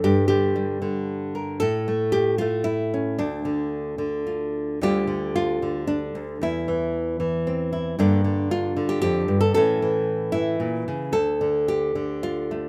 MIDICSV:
0, 0, Header, 1, 2, 480
1, 0, Start_track
1, 0, Key_signature, -1, "minor"
1, 0, Tempo, 525394
1, 29, Time_signature, 3, 2, 24, 8
1, 2910, Tempo, 537153
1, 5790, Tempo, 521739
1, 8670, Tempo, 536193
1, 11490, End_track
2, 0, Start_track
2, 0, Title_t, "Nylon-string guitar"
2, 0, Program_c, 0, 24
2, 0, Note_on_c, 0, 50, 58
2, 0, Note_on_c, 0, 55, 52
2, 35, Note_on_c, 0, 43, 77
2, 37, Note_on_c, 0, 67, 87
2, 243, Note_off_c, 0, 67, 0
2, 249, Note_off_c, 0, 50, 0
2, 254, Note_on_c, 0, 67, 81
2, 260, Note_on_c, 0, 50, 60
2, 497, Note_off_c, 0, 55, 0
2, 508, Note_on_c, 0, 55, 47
2, 735, Note_off_c, 0, 50, 0
2, 746, Note_on_c, 0, 50, 62
2, 1215, Note_off_c, 0, 67, 0
2, 1232, Note_on_c, 0, 70, 45
2, 1436, Note_off_c, 0, 43, 0
2, 1439, Note_off_c, 0, 70, 0
2, 1460, Note_on_c, 0, 69, 106
2, 1465, Note_off_c, 0, 50, 0
2, 1465, Note_off_c, 0, 55, 0
2, 1476, Note_on_c, 0, 45, 83
2, 1715, Note_on_c, 0, 57, 61
2, 1938, Note_on_c, 0, 67, 96
2, 2173, Note_off_c, 0, 67, 0
2, 2177, Note_on_c, 0, 65, 91
2, 2198, Note_off_c, 0, 57, 0
2, 2202, Note_on_c, 0, 57, 62
2, 2409, Note_off_c, 0, 69, 0
2, 2412, Note_on_c, 0, 64, 93
2, 2421, Note_off_c, 0, 65, 0
2, 2683, Note_on_c, 0, 61, 46
2, 2889, Note_off_c, 0, 61, 0
2, 2903, Note_off_c, 0, 64, 0
2, 2910, Note_on_c, 0, 62, 76
2, 2916, Note_on_c, 0, 38, 80
2, 2917, Note_off_c, 0, 45, 0
2, 3143, Note_off_c, 0, 57, 0
2, 3147, Note_on_c, 0, 50, 60
2, 3612, Note_off_c, 0, 50, 0
2, 3623, Note_on_c, 0, 50, 64
2, 3873, Note_off_c, 0, 62, 0
2, 3876, Note_on_c, 0, 65, 49
2, 4335, Note_off_c, 0, 65, 0
2, 4355, Note_off_c, 0, 38, 0
2, 4358, Note_off_c, 0, 50, 0
2, 4366, Note_on_c, 0, 38, 74
2, 4369, Note_on_c, 0, 50, 52
2, 4376, Note_on_c, 0, 55, 50
2, 4381, Note_on_c, 0, 67, 99
2, 4382, Note_on_c, 0, 65, 50
2, 4587, Note_off_c, 0, 50, 0
2, 4598, Note_on_c, 0, 50, 55
2, 4839, Note_off_c, 0, 65, 0
2, 4849, Note_on_c, 0, 65, 97
2, 5077, Note_off_c, 0, 50, 0
2, 5089, Note_on_c, 0, 50, 57
2, 5309, Note_off_c, 0, 65, 0
2, 5313, Note_on_c, 0, 62, 80
2, 5326, Note_off_c, 0, 67, 0
2, 5549, Note_off_c, 0, 38, 0
2, 5560, Note_on_c, 0, 38, 64
2, 5788, Note_off_c, 0, 62, 0
2, 5793, Note_off_c, 0, 38, 0
2, 5795, Note_off_c, 0, 50, 0
2, 5796, Note_on_c, 0, 40, 77
2, 5808, Note_on_c, 0, 64, 75
2, 6040, Note_on_c, 0, 52, 55
2, 6505, Note_off_c, 0, 52, 0
2, 6517, Note_on_c, 0, 52, 57
2, 6765, Note_on_c, 0, 60, 50
2, 6991, Note_off_c, 0, 64, 0
2, 7002, Note_on_c, 0, 64, 49
2, 7202, Note_off_c, 0, 52, 0
2, 7204, Note_off_c, 0, 40, 0
2, 7207, Note_off_c, 0, 60, 0
2, 7235, Note_off_c, 0, 64, 0
2, 7237, Note_off_c, 0, 55, 0
2, 7242, Note_on_c, 0, 43, 80
2, 7248, Note_on_c, 0, 50, 54
2, 7251, Note_on_c, 0, 62, 78
2, 7253, Note_on_c, 0, 58, 53
2, 7468, Note_off_c, 0, 50, 0
2, 7479, Note_on_c, 0, 50, 61
2, 7718, Note_off_c, 0, 62, 0
2, 7726, Note_on_c, 0, 65, 97
2, 7947, Note_off_c, 0, 50, 0
2, 7958, Note_on_c, 0, 50, 62
2, 8072, Note_on_c, 0, 67, 88
2, 8178, Note_off_c, 0, 67, 0
2, 8189, Note_on_c, 0, 67, 100
2, 8196, Note_off_c, 0, 43, 0
2, 8203, Note_on_c, 0, 41, 70
2, 8429, Note_off_c, 0, 41, 0
2, 8433, Note_on_c, 0, 43, 64
2, 8544, Note_off_c, 0, 67, 0
2, 8548, Note_on_c, 0, 69, 93
2, 8559, Note_off_c, 0, 65, 0
2, 8654, Note_off_c, 0, 58, 0
2, 8664, Note_off_c, 0, 69, 0
2, 8673, Note_off_c, 0, 43, 0
2, 8675, Note_on_c, 0, 69, 105
2, 8676, Note_off_c, 0, 50, 0
2, 8689, Note_on_c, 0, 45, 79
2, 8696, Note_on_c, 0, 52, 56
2, 8701, Note_on_c, 0, 57, 51
2, 8703, Note_on_c, 0, 61, 54
2, 8914, Note_off_c, 0, 52, 0
2, 8925, Note_on_c, 0, 52, 54
2, 9367, Note_off_c, 0, 69, 0
2, 9371, Note_on_c, 0, 64, 83
2, 9379, Note_off_c, 0, 52, 0
2, 9389, Note_on_c, 0, 52, 59
2, 9614, Note_off_c, 0, 45, 0
2, 9618, Note_on_c, 0, 46, 61
2, 9862, Note_off_c, 0, 46, 0
2, 9869, Note_on_c, 0, 49, 63
2, 10080, Note_off_c, 0, 52, 0
2, 10088, Note_on_c, 0, 38, 71
2, 10089, Note_off_c, 0, 64, 0
2, 10092, Note_off_c, 0, 57, 0
2, 10092, Note_on_c, 0, 69, 89
2, 10094, Note_off_c, 0, 61, 0
2, 10108, Note_off_c, 0, 49, 0
2, 10344, Note_on_c, 0, 50, 59
2, 10583, Note_off_c, 0, 69, 0
2, 10590, Note_on_c, 0, 67, 87
2, 10821, Note_off_c, 0, 50, 0
2, 10832, Note_on_c, 0, 50, 60
2, 11081, Note_on_c, 0, 65, 91
2, 11331, Note_on_c, 0, 57, 45
2, 11490, Note_off_c, 0, 38, 0
2, 11490, Note_off_c, 0, 50, 0
2, 11490, Note_off_c, 0, 57, 0
2, 11490, Note_off_c, 0, 65, 0
2, 11490, Note_off_c, 0, 67, 0
2, 11490, End_track
0, 0, End_of_file